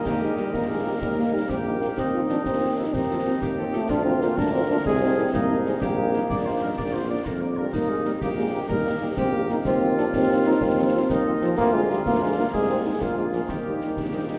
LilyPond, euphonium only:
\new Staff \with { instrumentName = "Euphonium" } { \time 6/8 \key ees \major \tempo 4. = 125 bes8 aes8 g8 bes8 aes8 bes8 | g8 bes8 g8 c'8 bes8 bes8 | c'4 d'8 c'4 ees'8 | c'2 r8 a8 |
d'8 c'8 bes8 d'8 c'8 d'8 | aes8 c'8 c'8 bes4 aes8 | bes2.~ | bes4. r4 g8 |
bes8 aes8 g8 bes8 aes8 bes8 | g8 bes8 g8 c'8 bes8 bes8 | c'4 d'8 c'4 ees'8 | c'2 r8 f8 |
bes8 aes8 g8 bes8 aes8 bes8 | aes8 c'8 aes8 bes8 aes8 f8 | ees2. | }